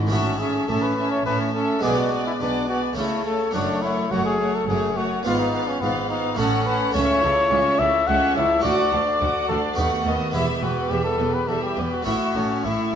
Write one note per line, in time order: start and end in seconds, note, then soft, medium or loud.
0.07 0.59 A1 medium
0.07 0.59 A2 medium
0.07 1.77 A3 soft
0.07 1.78 C#4 soft
0.07 1.79 E4 soft
0.11 0.59 A2 soft
0.11 0.38 C#4 soft
0.11 0.40 F#4 medium
0.11 0.39 E5 soft
0.11 0.39 A5 soft
0.39 0.67 C#4 soft
0.39 0.69 G#4 medium
0.39 0.67 E5 soft
0.39 0.68 A5 soft
0.68 1.16 A1 soft
0.68 1.16 A2 soft
0.68 1.17 A2 soft
0.68 0.96 C#4 soft
0.68 0.84 A4 medium
0.68 0.96 E5 soft
0.68 0.97 A5 soft
0.83 1.11 B4 medium
0.97 1.25 C#4 soft
0.97 1.24 E5 soft
0.97 1.24 A5 soft
1.11 1.25 C#5 medium
1.25 1.74 A1 medium
1.25 1.74 A2 medium
1.25 1.73 A2 soft
1.25 1.53 C#4 soft
1.25 1.39 B4 medium
1.25 1.53 E5 soft
1.25 1.53 A5 soft
1.54 1.83 C#4 soft
1.54 1.83 A4 medium
1.54 1.83 E5 soft
1.54 1.82 A5 soft
1.79 2.31 B1 medium
1.79 2.31 B2 medium
1.79 2.92 G#3 soft
1.79 2.93 B3 soft
1.79 2.94 D4 soft
1.79 2.11 D5 soft
1.79 2.11 G#5 soft
1.83 2.31 B2 soft
1.83 2.10 B3 soft
1.83 1.99 G#4 medium
1.97 2.26 F#4 medium
2.11 2.39 B3 soft
2.11 2.40 D5 soft
2.11 2.38 G#5 soft
2.26 2.33 E4 medium
2.39 2.88 B1 medium
2.39 2.88 B2 medium
2.39 2.88 B2 soft
2.39 2.68 B3 soft
2.39 2.68 D4 medium
2.39 2.68 D5 soft
2.39 2.67 G#5 soft
2.68 2.97 B3 soft
2.68 2.82 F#4 medium
2.68 2.97 D5 soft
2.68 2.96 G#5 soft
2.93 3.45 C#3 medium
2.93 3.50 A3 soft
2.93 3.24 A3 soft
2.93 3.51 C#4 soft
2.93 3.25 E4 medium
2.93 3.24 C#5 soft
2.93 3.24 A5 soft
2.97 3.45 C#2 medium
2.97 3.45 C#3 soft
3.25 3.52 A3 soft
3.25 3.54 A4 medium
3.25 3.53 C#5 soft
3.25 3.54 A5 soft
3.51 4.02 F#1 medium
3.51 4.02 F#2 medium
3.51 5.20 A3 soft
3.51 3.81 A3 soft
3.51 5.20 C#4 soft
3.51 3.84 D4 medium
3.51 3.82 C#5 soft
3.51 3.81 F#5 soft
3.55 4.02 F#2 soft
3.82 4.10 A3 soft
3.82 4.13 E4 medium
3.82 4.11 C#5 soft
3.82 4.10 F#5 soft
4.11 4.59 F#1 medium
4.11 4.59 F#2 medium
4.11 4.59 F#2 soft
4.11 4.39 A3 soft
4.11 4.25 F#4 medium
4.11 4.39 C#5 soft
4.11 4.38 F#5 soft
4.25 4.56 G#4 medium
4.40 4.67 A3 soft
4.40 4.67 C#5 soft
4.40 4.67 F#5 soft
4.55 4.68 A4 medium
4.68 5.16 F#1 medium
4.68 5.16 F#2 medium
4.68 5.16 F#2 soft
4.68 4.95 A3 soft
4.68 4.98 G#4 medium
4.68 4.95 C#5 soft
4.68 4.95 F#5 soft
4.96 5.24 A3 soft
4.96 5.25 F#4 medium
4.96 5.25 C#5 soft
4.96 5.25 F#5 soft
5.23 5.73 G#1 medium
5.23 5.73 G#2 medium
5.23 5.72 G#2 soft
5.23 6.34 B3 soft
5.23 5.53 B3 soft
5.23 6.35 F4 soft
5.23 5.41 F4 medium
5.23 5.52 F5 medium
5.39 5.69 D#4 medium
5.53 5.80 B3 soft
5.53 5.81 F5 soft
5.53 5.80 F5 soft
5.68 5.83 C#4 medium
5.81 6.29 G#1 medium
5.81 6.29 G#2 medium
5.81 6.29 G#2 soft
5.81 6.09 B3 medium
5.81 6.08 B3 soft
5.81 6.10 F5 soft
5.81 6.09 F5 soft
6.09 6.37 B3 soft
6.09 6.39 D#4 medium
6.09 6.38 F5 soft
6.35 6.86 A1 medium
6.35 6.86 A2 medium
6.35 6.90 A3 soft
6.35 6.91 C#4 soft
6.35 6.66 C#4 medium
6.35 6.93 F#4 soft
6.35 6.68 A4 medium
6.35 6.65 F#5 soft
6.35 6.65 A5 medium
6.39 6.86 A2 soft
6.66 6.94 C#4 soft
6.66 6.94 B4 medium
6.66 6.94 F#5 soft
6.66 6.94 A5 soft
6.91 7.03 C#2 medium
6.91 8.58 A3 soft
6.91 8.59 C#4 soft
6.91 8.60 E4 soft
6.91 7.81 C#5 medium
6.91 7.21 E5 medium
6.95 7.03 C#2 medium
6.95 7.20 C#2 soft
6.95 7.21 C#4 soft
6.95 7.21 C#6 soft
7.23 7.31 C#2 medium
7.23 7.49 C#2 soft
7.23 7.51 E4 soft
7.23 7.51 C#5 soft
7.23 7.52 A5 soft
7.51 7.59 C#2 medium
7.51 7.77 C#2 soft
7.51 7.59 C#2 medium
7.51 7.80 C#4 soft
7.51 7.80 E5 soft
7.51 7.80 C#6 soft
7.79 7.87 C#2 medium
7.79 7.88 C#2 medium
7.79 8.05 C#2 soft
7.79 8.08 E4 soft
7.79 8.08 C#5 soft
7.79 8.09 E5 medium
7.79 8.08 A5 soft
8.07 8.33 C#2 soft
8.07 8.16 C#2 medium
8.07 8.34 C#4 soft
8.07 8.35 E5 soft
8.07 8.35 F#5 medium
8.07 8.34 C#6 soft
8.36 8.44 C#2 medium
8.36 8.62 C#2 soft
8.36 8.44 C#2 medium
8.36 8.64 E4 soft
8.36 8.64 C#5 soft
8.36 8.62 E5 medium
8.36 8.64 A5 soft
8.60 9.72 A3 soft
8.60 9.73 F#4 soft
8.60 9.47 D5 medium
8.64 8.90 D2 soft
8.64 8.72 D2 medium
8.64 8.73 D2 medium
8.64 8.91 F#4 soft
8.64 8.90 F#5 medium
8.64 8.91 D6 soft
8.92 9.01 D2 soft
8.92 9.18 D2 soft
8.92 9.01 D2 medium
8.92 9.21 D4 soft
8.92 9.21 D5 soft
8.92 9.21 A5 soft
9.20 9.29 D2 medium
9.20 9.47 D2 soft
9.20 9.49 F#4 soft
9.20 9.49 F#5 soft
9.20 9.49 D6 soft
9.49 9.57 D2 medium
9.49 9.75 D2 soft
9.49 9.78 D4 soft
9.49 9.62 A4 medium
9.49 9.78 D5 soft
9.49 9.77 A5 soft
9.74 9.85 D#2 medium
9.74 10.30 A3 soft
9.74 10.30 B3 soft
9.74 10.32 F#4 soft
9.78 9.86 D#2 medium
9.78 10.03 D#2 soft
9.78 10.04 A3 soft
9.78 10.04 F#5 soft
9.78 10.04 B5 soft
10.05 10.13 D#2 soft
10.05 10.14 D#2 soft
10.05 10.32 D#2 soft
10.05 10.34 B3 soft
10.05 10.35 D#5 soft
10.05 10.34 A5 soft
10.31 10.42 E1 medium
10.31 10.42 E2 medium
10.31 10.60 E2 soft
10.31 10.60 G3 soft
10.31 12.01 B3 soft
10.31 12.02 E4 soft
10.31 10.47 E4 medium
10.31 10.61 E5 soft
10.31 10.60 B5 soft
10.62 10.70 E1 soft
10.62 10.70 E2 soft
10.62 10.88 E2 soft
10.62 10.91 B3 soft
10.62 10.91 F#4 medium
10.62 10.91 B4 soft
10.62 10.91 G5 soft
10.89 10.98 E1 soft
10.89 10.99 E2 medium
10.89 11.17 E2 soft
10.89 11.20 G3 soft
10.89 11.04 G4 medium
10.89 11.20 E5 soft
10.89 11.19 B5 soft
11.04 11.35 A4 medium
11.18 11.27 E1 soft
11.18 11.27 E2 soft
11.18 11.46 E2 soft
11.18 11.48 B3 soft
11.18 11.49 B4 soft
11.18 11.47 G5 soft
11.34 11.50 B4 medium
11.47 11.56 E1 soft
11.47 11.56 E2 soft
11.47 11.75 E2 soft
11.47 11.76 G3 soft
11.47 11.62 A4 medium
11.47 11.75 E5 soft
11.47 11.74 B5 soft
11.63 11.91 G4 medium
11.76 11.85 E1 soft
11.76 11.85 E2 soft
11.76 12.03 E2 soft
11.76 12.06 B3 soft
11.76 12.07 B4 soft
11.76 12.06 G5 soft
11.92 12.05 F#4 medium
12.02 12.14 A1 soft
12.02 12.14 A2 soft
12.02 12.95 A3 soft
12.02 12.95 C#4 soft
12.02 12.95 E4 soft
12.02 12.66 F#4 medium
12.02 12.33 C#6 soft
12.06 12.33 A2 soft
12.06 12.33 E4 soft
12.06 12.34 E5 soft
12.34 12.43 A1 soft
12.34 12.62 A2 soft
12.34 12.43 A2 soft
12.34 12.65 C#4 soft
12.34 12.65 C#5 soft
12.34 12.64 A5 soft
12.64 12.72 A1 soft
12.64 12.73 A2 soft
12.64 12.91 A2 soft
12.64 12.95 E4 soft
12.64 12.94 E4 soft
12.64 12.94 E5 soft
12.64 12.93 C#6 soft